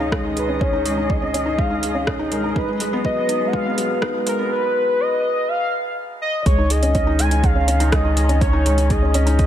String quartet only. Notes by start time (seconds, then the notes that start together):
Already playing: D#3 C#4 G#4 D#5 F5 A#5
2.57 F#3
2.79 B3
6.46 D#3
6.63 C#4